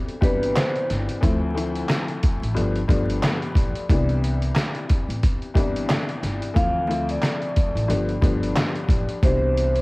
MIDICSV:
0, 0, Header, 1, 5, 480
1, 0, Start_track
1, 0, Tempo, 666667
1, 885, Time_signature, 4, 2, 24, 8
1, 7068, End_track
2, 0, Start_track
2, 0, Title_t, "Vibraphone"
2, 0, Program_c, 0, 11
2, 170, Note_on_c, 0, 71, 78
2, 384, Note_off_c, 0, 71, 0
2, 402, Note_on_c, 0, 72, 81
2, 619, Note_off_c, 0, 72, 0
2, 4722, Note_on_c, 0, 77, 96
2, 5078, Note_off_c, 0, 77, 0
2, 5116, Note_on_c, 0, 74, 74
2, 6623, Note_off_c, 0, 74, 0
2, 6651, Note_on_c, 0, 72, 99
2, 7068, Note_off_c, 0, 72, 0
2, 7068, End_track
3, 0, Start_track
3, 0, Title_t, "Upright piano"
3, 0, Program_c, 1, 0
3, 0, Note_on_c, 1, 36, 92
3, 0, Note_on_c, 1, 47, 80
3, 0, Note_on_c, 1, 52, 79
3, 0, Note_on_c, 1, 55, 81
3, 0, Note_on_c, 1, 62, 100
3, 85, Note_off_c, 1, 36, 0
3, 87, Note_off_c, 1, 52, 0
3, 90, Note_off_c, 1, 55, 0
3, 91, Note_off_c, 1, 47, 0
3, 93, Note_off_c, 1, 62, 0
3, 150, Note_on_c, 1, 36, 95
3, 153, Note_on_c, 1, 52, 80
3, 158, Note_on_c, 1, 55, 84
3, 164, Note_on_c, 1, 47, 85
3, 166, Note_on_c, 1, 62, 109
3, 828, Note_off_c, 1, 36, 0
3, 830, Note_off_c, 1, 52, 0
3, 832, Note_off_c, 1, 55, 0
3, 835, Note_off_c, 1, 47, 0
3, 836, Note_off_c, 1, 62, 0
3, 867, Note_on_c, 1, 38, 91
3, 871, Note_on_c, 1, 53, 84
3, 875, Note_on_c, 1, 57, 85
3, 880, Note_on_c, 1, 60, 75
3, 884, Note_on_c, 1, 64, 95
3, 1099, Note_off_c, 1, 38, 0
3, 1102, Note_off_c, 1, 53, 0
3, 1104, Note_off_c, 1, 57, 0
3, 1106, Note_off_c, 1, 60, 0
3, 1108, Note_off_c, 1, 64, 0
3, 1111, Note_on_c, 1, 38, 89
3, 1114, Note_on_c, 1, 53, 85
3, 1119, Note_on_c, 1, 57, 86
3, 1124, Note_on_c, 1, 60, 85
3, 1127, Note_on_c, 1, 64, 94
3, 1824, Note_off_c, 1, 53, 0
3, 1828, Note_off_c, 1, 57, 0
3, 1831, Note_on_c, 1, 43, 93
3, 1835, Note_on_c, 1, 53, 85
3, 1838, Note_off_c, 1, 38, 0
3, 1839, Note_on_c, 1, 57, 85
3, 1844, Note_off_c, 1, 60, 0
3, 1844, Note_on_c, 1, 59, 86
3, 1846, Note_off_c, 1, 64, 0
3, 1847, Note_on_c, 1, 62, 101
3, 1996, Note_off_c, 1, 43, 0
3, 1997, Note_off_c, 1, 53, 0
3, 2000, Note_off_c, 1, 57, 0
3, 2002, Note_off_c, 1, 59, 0
3, 2004, Note_off_c, 1, 62, 0
3, 2073, Note_on_c, 1, 43, 89
3, 2077, Note_on_c, 1, 53, 82
3, 2082, Note_on_c, 1, 57, 84
3, 2086, Note_on_c, 1, 59, 89
3, 2090, Note_on_c, 1, 62, 103
3, 2750, Note_off_c, 1, 43, 0
3, 2752, Note_off_c, 1, 53, 0
3, 2754, Note_off_c, 1, 57, 0
3, 2756, Note_off_c, 1, 59, 0
3, 2758, Note_off_c, 1, 62, 0
3, 2808, Note_on_c, 1, 36, 88
3, 2812, Note_on_c, 1, 52, 81
3, 2817, Note_on_c, 1, 55, 83
3, 2821, Note_on_c, 1, 59, 83
3, 2824, Note_on_c, 1, 62, 97
3, 3924, Note_off_c, 1, 36, 0
3, 3926, Note_off_c, 1, 52, 0
3, 3928, Note_off_c, 1, 55, 0
3, 3931, Note_off_c, 1, 59, 0
3, 3932, Note_off_c, 1, 62, 0
3, 3989, Note_on_c, 1, 36, 93
3, 3993, Note_on_c, 1, 52, 80
3, 3998, Note_on_c, 1, 55, 83
3, 4002, Note_on_c, 1, 59, 86
3, 4006, Note_on_c, 1, 62, 109
3, 4668, Note_off_c, 1, 36, 0
3, 4670, Note_off_c, 1, 52, 0
3, 4672, Note_off_c, 1, 55, 0
3, 4674, Note_off_c, 1, 59, 0
3, 4676, Note_off_c, 1, 62, 0
3, 4704, Note_on_c, 1, 38, 90
3, 4709, Note_on_c, 1, 53, 86
3, 4713, Note_on_c, 1, 57, 78
3, 4717, Note_on_c, 1, 60, 77
3, 4722, Note_on_c, 1, 52, 95
3, 4937, Note_off_c, 1, 38, 0
3, 4940, Note_off_c, 1, 53, 0
3, 4942, Note_off_c, 1, 57, 0
3, 4945, Note_off_c, 1, 60, 0
3, 4947, Note_off_c, 1, 52, 0
3, 4947, Note_on_c, 1, 38, 88
3, 4951, Note_on_c, 1, 53, 88
3, 4956, Note_on_c, 1, 57, 86
3, 4959, Note_on_c, 1, 60, 85
3, 4965, Note_on_c, 1, 64, 94
3, 5666, Note_off_c, 1, 53, 0
3, 5671, Note_off_c, 1, 57, 0
3, 5673, Note_on_c, 1, 43, 94
3, 5676, Note_off_c, 1, 38, 0
3, 5677, Note_on_c, 1, 53, 84
3, 5682, Note_off_c, 1, 60, 0
3, 5682, Note_on_c, 1, 57, 80
3, 5685, Note_off_c, 1, 64, 0
3, 5686, Note_on_c, 1, 59, 88
3, 5691, Note_on_c, 1, 62, 103
3, 5837, Note_off_c, 1, 43, 0
3, 5839, Note_off_c, 1, 53, 0
3, 5841, Note_off_c, 1, 57, 0
3, 5843, Note_off_c, 1, 59, 0
3, 5845, Note_off_c, 1, 62, 0
3, 5914, Note_on_c, 1, 43, 89
3, 5918, Note_on_c, 1, 53, 82
3, 5922, Note_on_c, 1, 57, 83
3, 5926, Note_on_c, 1, 59, 94
3, 5932, Note_on_c, 1, 62, 106
3, 6590, Note_off_c, 1, 43, 0
3, 6592, Note_off_c, 1, 53, 0
3, 6594, Note_off_c, 1, 57, 0
3, 6596, Note_off_c, 1, 59, 0
3, 6599, Note_off_c, 1, 62, 0
3, 6652, Note_on_c, 1, 36, 89
3, 6656, Note_on_c, 1, 52, 80
3, 6660, Note_on_c, 1, 55, 80
3, 6665, Note_on_c, 1, 47, 81
3, 6669, Note_on_c, 1, 62, 98
3, 7068, Note_off_c, 1, 36, 0
3, 7068, Note_off_c, 1, 47, 0
3, 7068, Note_off_c, 1, 52, 0
3, 7068, Note_off_c, 1, 55, 0
3, 7068, Note_off_c, 1, 62, 0
3, 7068, End_track
4, 0, Start_track
4, 0, Title_t, "Upright bass"
4, 0, Program_c, 2, 32
4, 159, Note_on_c, 2, 31, 82
4, 374, Note_off_c, 2, 31, 0
4, 647, Note_on_c, 2, 31, 99
4, 767, Note_off_c, 2, 31, 0
4, 884, Note_on_c, 2, 38, 108
4, 1309, Note_off_c, 2, 38, 0
4, 1744, Note_on_c, 2, 33, 93
4, 1834, Note_off_c, 2, 33, 0
4, 1846, Note_on_c, 2, 31, 99
4, 2058, Note_off_c, 2, 31, 0
4, 2079, Note_on_c, 2, 31, 97
4, 2294, Note_off_c, 2, 31, 0
4, 2558, Note_on_c, 2, 33, 89
4, 2682, Note_off_c, 2, 33, 0
4, 2804, Note_on_c, 2, 36, 106
4, 3229, Note_off_c, 2, 36, 0
4, 3662, Note_on_c, 2, 33, 84
4, 3753, Note_off_c, 2, 33, 0
4, 3999, Note_on_c, 2, 31, 83
4, 4214, Note_off_c, 2, 31, 0
4, 4483, Note_on_c, 2, 31, 96
4, 4605, Note_off_c, 2, 31, 0
4, 4723, Note_on_c, 2, 38, 109
4, 5148, Note_off_c, 2, 38, 0
4, 5581, Note_on_c, 2, 33, 89
4, 5672, Note_off_c, 2, 33, 0
4, 5684, Note_on_c, 2, 31, 97
4, 5897, Note_off_c, 2, 31, 0
4, 5920, Note_on_c, 2, 31, 96
4, 6134, Note_off_c, 2, 31, 0
4, 6399, Note_on_c, 2, 33, 91
4, 6523, Note_off_c, 2, 33, 0
4, 6644, Note_on_c, 2, 36, 107
4, 7068, Note_off_c, 2, 36, 0
4, 7068, End_track
5, 0, Start_track
5, 0, Title_t, "Drums"
5, 61, Note_on_c, 9, 42, 36
5, 133, Note_off_c, 9, 42, 0
5, 159, Note_on_c, 9, 36, 91
5, 169, Note_on_c, 9, 42, 71
5, 231, Note_off_c, 9, 36, 0
5, 241, Note_off_c, 9, 42, 0
5, 309, Note_on_c, 9, 42, 55
5, 381, Note_off_c, 9, 42, 0
5, 404, Note_on_c, 9, 39, 94
5, 404, Note_on_c, 9, 42, 89
5, 410, Note_on_c, 9, 38, 117
5, 476, Note_off_c, 9, 39, 0
5, 476, Note_off_c, 9, 42, 0
5, 482, Note_off_c, 9, 38, 0
5, 544, Note_on_c, 9, 42, 37
5, 616, Note_off_c, 9, 42, 0
5, 647, Note_on_c, 9, 38, 36
5, 648, Note_on_c, 9, 42, 75
5, 719, Note_off_c, 9, 38, 0
5, 720, Note_off_c, 9, 42, 0
5, 783, Note_on_c, 9, 42, 55
5, 855, Note_off_c, 9, 42, 0
5, 884, Note_on_c, 9, 36, 113
5, 888, Note_on_c, 9, 42, 88
5, 956, Note_off_c, 9, 36, 0
5, 960, Note_off_c, 9, 42, 0
5, 1134, Note_on_c, 9, 42, 74
5, 1206, Note_off_c, 9, 42, 0
5, 1264, Note_on_c, 9, 42, 52
5, 1336, Note_off_c, 9, 42, 0
5, 1360, Note_on_c, 9, 39, 81
5, 1365, Note_on_c, 9, 38, 100
5, 1376, Note_on_c, 9, 42, 93
5, 1432, Note_off_c, 9, 39, 0
5, 1437, Note_off_c, 9, 38, 0
5, 1448, Note_off_c, 9, 42, 0
5, 1500, Note_on_c, 9, 42, 38
5, 1572, Note_off_c, 9, 42, 0
5, 1605, Note_on_c, 9, 42, 82
5, 1609, Note_on_c, 9, 36, 87
5, 1677, Note_off_c, 9, 42, 0
5, 1681, Note_off_c, 9, 36, 0
5, 1753, Note_on_c, 9, 42, 57
5, 1825, Note_off_c, 9, 42, 0
5, 1847, Note_on_c, 9, 42, 90
5, 1919, Note_off_c, 9, 42, 0
5, 1984, Note_on_c, 9, 42, 36
5, 2056, Note_off_c, 9, 42, 0
5, 2080, Note_on_c, 9, 36, 90
5, 2090, Note_on_c, 9, 42, 70
5, 2152, Note_off_c, 9, 36, 0
5, 2162, Note_off_c, 9, 42, 0
5, 2230, Note_on_c, 9, 42, 56
5, 2302, Note_off_c, 9, 42, 0
5, 2325, Note_on_c, 9, 39, 96
5, 2325, Note_on_c, 9, 42, 90
5, 2331, Note_on_c, 9, 38, 120
5, 2397, Note_off_c, 9, 39, 0
5, 2397, Note_off_c, 9, 42, 0
5, 2403, Note_off_c, 9, 38, 0
5, 2464, Note_on_c, 9, 42, 37
5, 2536, Note_off_c, 9, 42, 0
5, 2559, Note_on_c, 9, 36, 93
5, 2568, Note_on_c, 9, 42, 75
5, 2631, Note_off_c, 9, 36, 0
5, 2640, Note_off_c, 9, 42, 0
5, 2703, Note_on_c, 9, 42, 54
5, 2775, Note_off_c, 9, 42, 0
5, 2804, Note_on_c, 9, 36, 111
5, 2808, Note_on_c, 9, 42, 85
5, 2876, Note_off_c, 9, 36, 0
5, 2880, Note_off_c, 9, 42, 0
5, 2945, Note_on_c, 9, 42, 37
5, 3017, Note_off_c, 9, 42, 0
5, 3052, Note_on_c, 9, 42, 76
5, 3124, Note_off_c, 9, 42, 0
5, 3183, Note_on_c, 9, 42, 53
5, 3255, Note_off_c, 9, 42, 0
5, 3278, Note_on_c, 9, 39, 79
5, 3284, Note_on_c, 9, 38, 102
5, 3295, Note_on_c, 9, 42, 93
5, 3350, Note_off_c, 9, 39, 0
5, 3356, Note_off_c, 9, 38, 0
5, 3367, Note_off_c, 9, 42, 0
5, 3419, Note_on_c, 9, 42, 36
5, 3491, Note_off_c, 9, 42, 0
5, 3524, Note_on_c, 9, 42, 82
5, 3528, Note_on_c, 9, 36, 89
5, 3596, Note_off_c, 9, 42, 0
5, 3600, Note_off_c, 9, 36, 0
5, 3673, Note_on_c, 9, 42, 56
5, 3745, Note_off_c, 9, 42, 0
5, 3767, Note_on_c, 9, 42, 90
5, 3768, Note_on_c, 9, 36, 84
5, 3839, Note_off_c, 9, 42, 0
5, 3840, Note_off_c, 9, 36, 0
5, 3903, Note_on_c, 9, 42, 35
5, 3975, Note_off_c, 9, 42, 0
5, 3999, Note_on_c, 9, 36, 93
5, 4010, Note_on_c, 9, 42, 72
5, 4071, Note_off_c, 9, 36, 0
5, 4082, Note_off_c, 9, 42, 0
5, 4148, Note_on_c, 9, 42, 57
5, 4220, Note_off_c, 9, 42, 0
5, 4244, Note_on_c, 9, 39, 93
5, 4244, Note_on_c, 9, 42, 87
5, 4249, Note_on_c, 9, 38, 119
5, 4316, Note_off_c, 9, 39, 0
5, 4316, Note_off_c, 9, 42, 0
5, 4321, Note_off_c, 9, 38, 0
5, 4383, Note_on_c, 9, 42, 36
5, 4455, Note_off_c, 9, 42, 0
5, 4486, Note_on_c, 9, 38, 35
5, 4488, Note_on_c, 9, 42, 78
5, 4558, Note_off_c, 9, 38, 0
5, 4560, Note_off_c, 9, 42, 0
5, 4622, Note_on_c, 9, 42, 54
5, 4694, Note_off_c, 9, 42, 0
5, 4724, Note_on_c, 9, 36, 107
5, 4728, Note_on_c, 9, 42, 86
5, 4796, Note_off_c, 9, 36, 0
5, 4800, Note_off_c, 9, 42, 0
5, 4974, Note_on_c, 9, 42, 72
5, 5046, Note_off_c, 9, 42, 0
5, 5105, Note_on_c, 9, 42, 54
5, 5177, Note_off_c, 9, 42, 0
5, 5200, Note_on_c, 9, 39, 79
5, 5206, Note_on_c, 9, 38, 97
5, 5217, Note_on_c, 9, 42, 92
5, 5272, Note_off_c, 9, 39, 0
5, 5278, Note_off_c, 9, 38, 0
5, 5289, Note_off_c, 9, 42, 0
5, 5341, Note_on_c, 9, 42, 36
5, 5413, Note_off_c, 9, 42, 0
5, 5445, Note_on_c, 9, 42, 82
5, 5448, Note_on_c, 9, 36, 87
5, 5517, Note_off_c, 9, 42, 0
5, 5520, Note_off_c, 9, 36, 0
5, 5593, Note_on_c, 9, 42, 55
5, 5665, Note_off_c, 9, 42, 0
5, 5687, Note_on_c, 9, 42, 91
5, 5759, Note_off_c, 9, 42, 0
5, 5823, Note_on_c, 9, 42, 35
5, 5895, Note_off_c, 9, 42, 0
5, 5919, Note_on_c, 9, 36, 93
5, 5930, Note_on_c, 9, 42, 75
5, 5991, Note_off_c, 9, 36, 0
5, 6002, Note_off_c, 9, 42, 0
5, 6070, Note_on_c, 9, 42, 56
5, 6142, Note_off_c, 9, 42, 0
5, 6164, Note_on_c, 9, 39, 93
5, 6164, Note_on_c, 9, 42, 90
5, 6170, Note_on_c, 9, 38, 121
5, 6236, Note_off_c, 9, 39, 0
5, 6236, Note_off_c, 9, 42, 0
5, 6242, Note_off_c, 9, 38, 0
5, 6304, Note_on_c, 9, 42, 37
5, 6376, Note_off_c, 9, 42, 0
5, 6399, Note_on_c, 9, 36, 91
5, 6408, Note_on_c, 9, 42, 75
5, 6471, Note_off_c, 9, 36, 0
5, 6480, Note_off_c, 9, 42, 0
5, 6543, Note_on_c, 9, 42, 54
5, 6615, Note_off_c, 9, 42, 0
5, 6644, Note_on_c, 9, 36, 112
5, 6648, Note_on_c, 9, 42, 90
5, 6716, Note_off_c, 9, 36, 0
5, 6720, Note_off_c, 9, 42, 0
5, 6893, Note_on_c, 9, 42, 75
5, 6965, Note_off_c, 9, 42, 0
5, 7024, Note_on_c, 9, 42, 53
5, 7068, Note_off_c, 9, 42, 0
5, 7068, End_track
0, 0, End_of_file